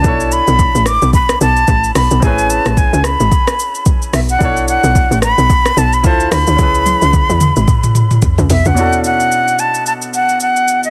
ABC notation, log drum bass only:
X:1
M:4/4
L:1/16
Q:"Swing 16ths" 1/4=110
K:Bdor
V:1 name="Log drum bass" clef=bass
B,,,3 B,,,2 A,,,2 B,,,3 B,,,2 A,,,2 B,,, B,,, | A,,,3 A,,,2 C,,2 G,,, z6 B,,,2 | B,,,3 B,,,2 A,,,2 B,,,3 B,,,2 D,,2 D,, D,, | C,,3 C,,2 E,,2 G,,, z4 z C,, B,,, C,, |
z16 |]